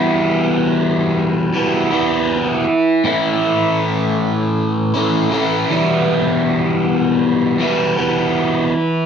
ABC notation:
X:1
M:4/4
L:1/8
Q:1/4=79
K:Edor
V:1 name="Overdriven electric guitar" clef=bass
[E,,B,,E,G,B,E]4 [E,,B,,E,G,B,E] [E,,B,,E,G,B,E]2 z | [A,,E,A,CE]4- [A,,E,A,CE] [A,,E,A,CE] [A,,E,A,CE] [E,,B,,E,G,B,E]- | [E,,B,,E,G,B,E]4 [E,,B,,E,G,B,E] [E,,B,,E,G,B,E]2 z |]